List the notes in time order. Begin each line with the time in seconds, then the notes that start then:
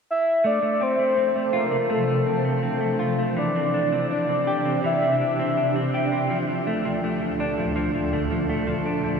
0.11 E5
0.44 C3 F3 A3 D4 D5 A5
0.62 A3
0.81 C4 C5
0.99 A3
1.17 C4
1.36 A3
1.53 F4 A#4
1.71 A3
1.90 A3 A4
2.08 A3
2.26 C4
2.45 A3
2.63 C4
2.81 A3
2.99 F4
3.19 A3
3.36 C3 E3 G4 D5
3.56 C4
3.74 D4
3.92 C4
4.11 D4 D5
4.29 C4
4.47 G4
4.65 C4
4.84 E3 E5
5.03 C4
5.21 D4
5.39 C4
5.57 D4
5.76 C4
5.94 G4
6.12 C4
6.29 D2 A#2 D3 F3 A4
6.49 F3
6.67 A3
6.85 F3
7.04 A3
7.22 F3
7.40 D4
7.58 F3
7.76 F3
7.95 F3
8.13 A3
8.31 F3
8.49 A3
8.67 F3
8.86 D4
9.04 F3